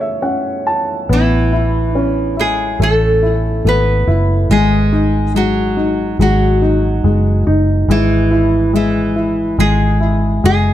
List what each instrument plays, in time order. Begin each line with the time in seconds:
Already playing: upright piano C#2 C#3 A3 C#4 C#5, nylon-string guitar A4
0.01 upright piano E5
0.22 upright piano C#4 F#5
0.67 upright piano A5
1.09 fingered electric bass A1, nylon-string guitar E3 E4, upright piano B3
1.53 upright piano E4
1.95 upright piano C#4, nylon-string guitar D4
2.37 nylon-string guitar G#3 G#4, upright piano E4
2.80 fingered electric bass A1, upright piano A3, nylon-string guitar A3 A4
3.22 upright piano E4
3.65 fingered electric bass G#1, upright piano A3, nylon-string guitar B3 B4
4.07 fingered electric bass F#1, upright piano E4
4.49 fingered electric bass G#1, nylon-string guitar G#3 G#4, upright piano G#3
4.93 upright piano D#4
5.35 nylon-string guitar F#3 F#4, upright piano G#3
5.77 upright piano D#4
6.19 fingered electric bass G#1, nylon-string guitar F#3 F#4, upright piano G#3
6.62 upright piano D#4
7.04 fingered electric bass F#1, upright piano G#3
7.47 fingered electric bass F#1, upright piano D#4
7.88 fingered electric bass G#1, nylon-string guitar E3 E4, upright piano G#3
8.31 upright piano E4
8.73 nylon-string guitar E3 E4, upright piano G#3
9.16 upright piano E4
9.58 fingered electric bass G#1, upright piano G#3, nylon-string guitar G#3 G#4
10.01 upright piano E4
10.44 fingered electric bass F#1, upright piano G#3, nylon-string guitar G#3 G#4